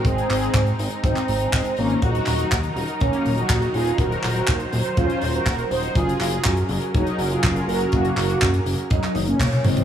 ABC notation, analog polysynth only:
X:1
M:4/4
L:1/16
Q:1/4=122
K:Ebdor
V:1 name="Analog polysynth"
[CA]2 [CA]3 z3 [CE]3 [A,C]3 [B,D]2 | [EG]2 [EG]3 z3 [B,D]3 [EG]3 [FA]2 | [GB]2 [GB]3 z3 [DF]3 [GB]3 [Ec]2 | [FA]2 [FA]3 z3 [G,E]3 [FA]3 [GB]2 |
[B,G]2 [B,G]3 z3 [G,E]3 [B,D]3 [A,C]2 |]